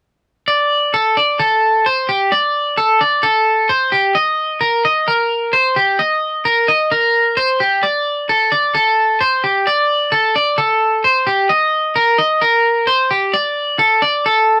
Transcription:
0.48 D5
0.94 A4
1.17 D5
1.39 A4
1.86 C5
2.09 G4
2.32 D5
2.77 A4
3.01 D5
3.23 A4
3.69 C5
3.92 G4
4.15 D#5
4.61 A#4
4.85 D#5
5.08 A#4
5.53 C5
5.76 G4
5.99 D#5
6.45 A#4
6.68 D#5
6.91 A#4
7.37 C5
7.60 G4
7.83 D5
8.29 A4
8.52 D5
8.75 A4
9.21 C5
9.44 G4
9.67 D5
10.12 A4
10.36 D5
10.58 A4
11.04 C5
11.27 G4
11.49 D#5
11.96 A#4
12.18 D#5
12.42 A#4
12.87 C5
13.11 G4
13.34 D5
13.79 A4
14.02 D5
14.26 A4

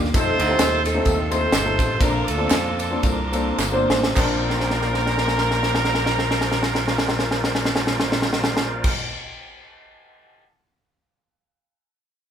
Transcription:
Already playing: D#2 G4 F5 D6
0.05 snare
0.14 F2 A3 C4 D#4 F4 A4 C5 F5 C6, kick, ride, tambourine
0.39 D2, ride, tambourine
0.49 A3 C4 D#4 F4 G4
0.59 D#2, snare, clap, ride, tambourine
0.84 C4 D#4 A4, snare, ride, tambourine
0.94 A3 C4 D#4 F4 A4
1.05 D#2, kick, ride, tambourine
1.30 A3 C4 D#4 F4 A4 C5, ride, tambourine
1.52 G1, snare, clap, ride, tambourine
1.64 A3 C4 D#4 F4 A4
1.79 A1, kick, ride, tambourine
1.99 A#1 A#2 A#3 C4 D4 F4 A4 A#4 A5 C6 D6, kick, ride, tambourine
2.28 D2 C4 D4 A4, ride, tambourine
2.37 A#3 C4 D4 F4 A4
2.50 F2, snare, clap, ride, tambourine
2.79 A4, ride, tambourine
2.90 A#3 C4 D4 F4 A4
3.03 C2 D4 F4 A#4, kick, ride, tambourine
3.32 A#3 C4 D4 F4 A4, ride, tambourine
3.58 G1, snare, clap, tambourine
3.72 A#3 C4 D4 F4 C5
3.90 A1, snare, tambourine
4.03 snare
4.14 A#1 A#3 C4 D4 F4 A#4 C5 D5, kick, clap, crash
4.18 A5
4.50 snare
4.60 snare
4.70 snare
4.82 snare
4.94 snare
5.06 snare
5.18 snare
5.28 snare
5.38 snare
5.51 snare
5.63 snare
5.75 snare
5.85 snare
5.95 snare
6.06 snare
6.19 snare
6.31 snare
6.41 snare
6.52 snare
6.63 snare
6.75 snare
6.88 snare
6.98 snare
7.09 snare
7.19 snare
7.31 snare
7.44 snare
7.55 snare
7.65 snare
7.76 snare
7.87 snare
8.00 snare
8.12 snare
8.22 snare
8.33 snare
8.44 snare
8.57 snare
8.84 kick, crash

